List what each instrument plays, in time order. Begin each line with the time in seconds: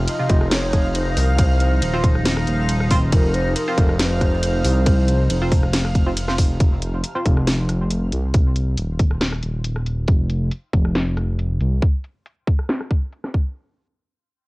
Already playing: synth drone C3 F3 D#4, synth texture F5
0.08 shakuhachi D#5, closed hi-hat, ride
0.19 synth stab C3 F4
0.29 detuned saw bass F1, kick, closed hi-hat
0.41 cross-stick
0.51 shakuhachi C#5, snare, closed hi-hat, ride
0.73 kick, cross-stick, closed hi-hat
0.95 shakuhachi C5, closed hi-hat, ride
1.17 detuned saw bass C2, shakuhachi A#4, open hi-hat
1.38 shakuhachi C#5, kick, closed hi-hat, ride
1.43 shakuhachi C5
1.60 shakuhachi C5, closed hi-hat
1.82 detuned saw bass D#1, closed hi-hat, ride
1.94 synth stab C4 F4 C5
2.04 kick, closed hi-hat
2.15 cross-stick
2.25 snare, closed hi-hat, ride
2.37 cross-stick
2.47 detuned saw bass D#1, closed hi-hat
2.69 closed hi-hat, ride
2.80 cross-stick
2.90 synth stab C4 F4 C5, kick, open hi-hat
3.12 detuned saw bass F1, shakuhachi A#4, kick, closed hi-hat, ride
3.34 shakuhachi C5, closed hi-hat
3.56 shakuhachi A#4, closed hi-hat, ride
3.68 synth stab C4 F4 C5
3.78 detuned saw bass F1, kick, closed hi-hat
3.89 cross-stick
3.99 shakuhachi C5, snare, closed hi-hat, ride
4.21 kick, cross-stick, closed hi-hat
4.43 closed hi-hat, ride
4.65 detuned saw bass C2, open hi-hat
4.86 kick, closed hi-hat, ride
5.08 closed hi-hat
5.30 detuned saw bass F1, closed hi-hat, ride
5.42 synth stab C4 F4 C5
5.52 kick, open hi-hat
5.63 cross-stick
5.73 snare, closed hi-hat, ride
5.85 cross-stick
5.95 kick, closed hi-hat
6.07 synth stab C4 F4 C5
6.17 closed hi-hat, ride
6.28 synth stab C4 F4 C5, cross-stick, snare
6.38 kick, open hi-hat
6.60 detuned saw bass F1, kick, closed hi-hat
6.82 closed hi-hat
7.04 closed hi-hat
7.15 synth stab C4 F4 C5
7.26 detuned saw bass F1, kick, closed hi-hat
7.37 cross-stick
7.47 snare, closed hi-hat
7.69 cross-stick, closed hi-hat
7.91 closed hi-hat
8.12 detuned saw bass C2, closed hi-hat
8.34 kick, closed hi-hat
8.56 closed hi-hat
8.78 detuned saw bass D#1, closed hi-hat
8.99 kick, closed hi-hat
9.11 cross-stick
9.21 snare, closed hi-hat
9.33 cross-stick
9.43 detuned saw bass D#1, closed hi-hat
9.64 closed hi-hat
9.76 cross-stick
9.86 closed hi-hat
10.08 detuned saw bass F1, kick, closed hi-hat
10.30 closed hi-hat
10.52 closed hi-hat
10.73 detuned saw bass F1, kick, closed hi-hat
10.85 cross-stick
10.95 snare, closed hi-hat
11.17 cross-stick, closed hi-hat
11.39 closed hi-hat
11.60 detuned saw bass C2, closed hi-hat
11.82 kick, closed hi-hat
12.04 closed hi-hat
12.26 closed hi-hat
12.47 kick, closed hi-hat
12.59 cross-stick
12.69 snare, closed hi-hat
12.81 cross-stick
12.91 kick, closed hi-hat
13.13 closed hi-hat
13.24 cross-stick, snare
13.34 kick, closed hi-hat